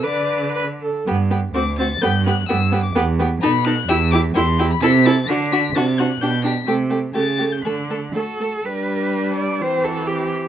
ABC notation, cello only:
X:1
M:2/4
L:1/8
Q:1/4=128
K:G
V:1 name="Cello" clef=bass
D,3 z | G,,2 D,,2 | G,,2 G,,2 | E,,2 B,,2 |
E,,2 E,,2 | C,2 D,2 | C,2 B,,2 | C,2 ^C,2 |
D,2 A2 | B3 d | c A G z |]